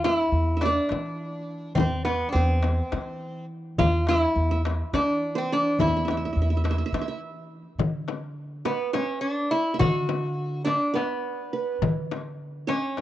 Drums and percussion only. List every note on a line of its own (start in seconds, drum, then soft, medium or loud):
0.04 darbuka tek medium
0.04 frame drum medium
0.61 darbuka tek medium
0.61 frame drum medium
0.89 darbuka tek medium
0.89 frame drum medium
1.76 darbuka dum medium
1.76 frame drum medium
2.05 darbuka tek medium
2.05 frame drum medium
2.63 darbuka tek medium
2.63 frame drum medium
2.92 darbuka tek medium
2.92 frame drum medium
3.78 darbuka dum medium
3.78 frame drum medium
4.07 darbuka tek medium
4.07 frame drum medium
4.65 darbuka tek medium
4.65 frame drum medium
4.94 darbuka tek medium
4.94 frame drum medium
5.79 darbuka dum medium
5.79 frame drum medium
6.08 darbuka tek medium
6.08 frame drum medium
6.65 darbuka tek medium
6.65 frame drum medium
6.94 darbuka tek medium
6.94 frame drum medium
7.79 frame drum medium
7.79 darbuka dum medium
8.08 darbuka tek medium
8.08 frame drum medium
8.65 darbuka tek medium
8.65 frame drum medium
8.94 darbuka tek medium
8.94 frame drum medium
9.80 frame drum medium
9.80 darbuka dum loud
10.09 darbuka tek medium
10.09 frame drum medium
10.67 darbuka tek medium
10.67 frame drum medium
10.96 darbuka tek medium
10.96 frame drum medium
11.82 frame drum medium
11.82 darbuka dum medium
12.11 darbuka tek medium
12.11 frame drum medium
12.69 darbuka tek medium
12.69 frame drum medium
12.97 darbuka tek medium